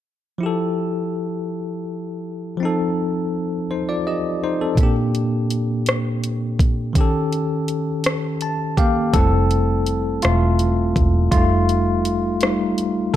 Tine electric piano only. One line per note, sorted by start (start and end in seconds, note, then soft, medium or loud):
0.38 2.54 F3 medium
0.38 2.55 E4 medium
0.43 2.56 G4 soft
0.43 2.58 A4 medium
2.57 4.72 F3 medium
2.57 3.67 C4 medium
2.63 3.68 D#4 medium
2.63 3.69 A4 medium
3.71 3.87 D#4 soft
3.71 3.87 C5 soft
3.89 4.05 F4 soft
3.89 4.05 D5 medium
4.07 4.41 G4 soft
4.07 4.40 D#5 medium
4.44 4.60 D#4 medium
4.44 4.60 C5 medium
4.61 4.95 C4 soft
4.61 4.95 A4 medium
4.75 6.91 A#2 medium
4.75 6.92 A#3 medium
4.81 6.93 D4 medium
4.81 6.94 G4 medium
6.93 9.09 D#3 medium
6.93 9.10 C#4 medium
6.98 8.76 G4 medium
6.98 9.12 A4 medium
8.42 8.75 A5 soft
8.77 9.12 A#3 medium
8.77 9.15 G4 medium
8.77 9.12 F5 medium
9.13 9.62 G3 soft
9.13 9.63 A3 soft
9.13 9.84 C4 medium
9.13 9.63 E4 soft
9.13 9.82 A4 medium
10.23 11.29 A3 medium
10.23 11.28 F4 medium
11.32 11.81 G3 soft
11.32 12.11 A3 medium
11.32 11.81 D#4 medium
11.32 12.10 F4 medium
12.42 12.74 G3 soft
12.42 12.74 A3 soft
12.42 12.75 D#4 soft